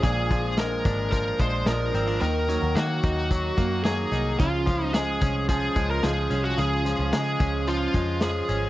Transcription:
<<
  \new Staff \with { instrumentName = "Lead electric guitar" } { \time 4/4 \key des \major \tempo 4 = 110 aes'4 bes'4 bes'8 c''8 bes'4 | bes'4 ges'2 aes'4 | f'4 aes'4 aes'8. bes'16 aes'8. ges'16 | aes'4 aes'4 f'4 aes'4 | }
  \new Staff \with { instrumentName = "Twelve-string acoustic guitar" } { \time 4/4 \key des \major <bes, f aes d' f'>8 <f aes d' f'>16 <aes d' f'>4.~ <aes d' f'>16 <f aes d' f'>8 <f aes d' f'>8 <f aes d' f'>8 | <ees bes ees' ges'>8 <ees bes ees' ges'>16 <bes ees' ges'>4.~ <bes ees' ges'>16 <ees bes ees' ges'>8 <ees bes ees' ges'>8 <ees bes ees' ges'>8 | <des f aes des' f'>8 <f aes des' f'>16 <aes des' f'>4.~ <aes des' f'>16 <f aes des' f'>8 <f aes des' f'>8 <f aes des' f'>8 | <des f aes des' f'>8 <f aes des' f'>16 <aes des' f'>4.~ <aes des' f'>16 <f aes des' f'>8 <f aes des' f'>8 <f aes des' f'>8 | }
  \new Staff \with { instrumentName = "Clean electric guitar" } { \clef bass \time 4/4 \key des \major bes,8 f8 aes8 d'8 f8 aes8 f8 c'16 d'16 | ees8 ges8 bes8 ees'8 ges8 bes8 ges8 ees'8 | r8 f8 aes8 des'8 f8 aes8 f8 des'8 | des8 f8 aes8 des'8 f8 aes8 f8 des'8 | }
  \new Staff \with { instrumentName = "Picked electric bass" } { \clef bass \time 4/4 \key des \major bes,,4. aes,,4 bes,,8 bes,,8 aes,,8 | ees,8. ees,16 ees8 ees,4 ges,4 c,8 | des,4. c,4 des,8 des,8 c,8 | des,8. des,16 des8 des,4 f,4 aes,,8 | }
  \new DrumStaff \with { instrumentName = "Drums" } \drummode { \time 4/4 <hh bd>8 <hh bd>8 <hh sn>8 <hh bd>8 <hh bd>8 <hh bd>8 <hh sn>8 hh8 | hh8 hh8 <hh sn>8 <hh bd>8 <hh bd>8 <hh bd>8 <hh sn>8 hh8 | <hh bd>8 <hh bd>8 <hh sn>8 <hh bd>8 <hh bd>8 <hh bd>8 <hh sn>8 hh8 | hh8 hh8 <hh sn>8 <hh bd>8 hh8 <hh bd>8 <hh sn>8 hh8 | }
>>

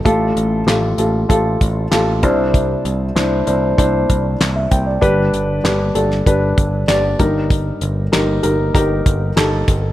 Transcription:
<<
  \new Staff \with { instrumentName = "Grand piano" } { \time 4/4 \key c \major \tempo 4 = 97 << { r1 | r2. r16 e''16 g''16 d''16~ | d''16 r2. r8. | r1 | } \\ { <f' g' a'>4 <f' g' a'>8 <f' g' a'>8 <f' g' a'>4 <f' g' a'>8 <d' e' c''>8~ | <d' e' c''>4 <d' e' c''>8 <d' e' c''>8 <d' e' c''>4 r4 | <d' g' b'>4 <d' g' b'>8 <d' g' a'>8 <d' g' b'>4 <d' g' d''>8 <ees' g' bes'>8~ | <ees' g' bes'>4 <ees' g' bes'>8 <ees' g' bes'>8 <ees' g' bes'>4 <ees' g' a'>4 | } >> }
  \new Staff \with { instrumentName = "Grand piano" } { \clef bass \time 4/4 \key c \major <a, a>4. r2 <c g>8~ | <c g>4 r2. | <g, d>4. r2 <g, g>8~ | <g, g>4 r2. | }
  \new Staff \with { instrumentName = "Picked electric bass" } { \clef bass \time 4/4 \key c \major a,,8 a,,8 a,,8 a,,8 a,,8 a,,8 a,,8 c,8~ | c,8 c,8 c,8 c,8 c,8 c,8 c,8 c,8 | g,,8 g,,8 g,,8 g,,8 g,,8 g,,8 g,,8 g,,8~ | g,,8 g,,8 g,,8 g,,8 g,,8 g,,8 g,,8 g,,8 | }
  \new DrumStaff \with { instrumentName = "Drums" } \drummode { \time 4/4 <hh bd>8 hh8 <hc hh sn>8 hh8 <hh bd>8 <hh bd>8 <hc hh sn>8 <hh bd>8 | <hh bd>8 hh8 <hc hh sn>8 hh8 <hh bd>8 <hh bd>8 <hc hh sn>8 <hh bd>8 | <hh bd>8 hh8 <hc hh sn>8 hh16 sn16 <hh bd>8 <hh bd>8 <hc hh sn>8 <hh bd>8 | <hh bd>8 hh8 <hc hh sn>8 hh8 <hh bd>8 <hh bd>8 <hc hh sn>8 <hh bd>8 | }
>>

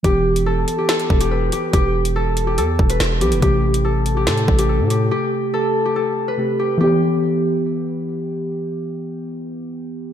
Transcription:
<<
  \new Staff \with { instrumentName = "Harp" } { \time 4/4 \key e \minor \tempo 4 = 142 g'4 a'8. g'16 a'8. g'16 b'8 g'8 | g'4 a'8. g'16 a'8. b'8. g'8 | g'4 a'8. g'16 a'8. g'16 a'8 g'8 | g'4 a'8. g'16 a'8. b'8. g'8 |
g'2. r4 | r1 | }
  \new Staff \with { instrumentName = "Synth keys" } { \time 4/4 \key e \minor <e b g'>1~ | <e b g'>2.~ <e b g'>8 <e b g'>8 | <c a g'>1~ | <c a g'>2. <c a g'>4 |
<e b g'>1~ | <e b g'>1 | }
  \new Staff \with { instrumentName = "808-style bass" } { \clef bass \time 4/4 \key e \minor e,,4. r4 e,,4 r8 | e,,2 e,8 e,,8 e,,8 b,,16 e,,16 | a,,2 a,8 a,,8. a,8. | r1 |
r1 | r1 | }
  \new DrumStaff \with { instrumentName = "Drums" } \drummode { \time 4/4 <hh bd>8. hh16 r8 hh8 <hh sn>16 hh16 bd16 hh16 r8 hh8 | <hh bd>8. hh16 r8 hh8 hh8 bd16 hh16 <hh ss sn>8 hh16 hh16 | <hh bd>8. hh16 r8 hh8 <hh sn>16 hh16 bd16 hh16 r8 hh8 | r4 r4 r4 r4 |
r4 r4 r4 r4 | r4 r4 r4 r4 | }
>>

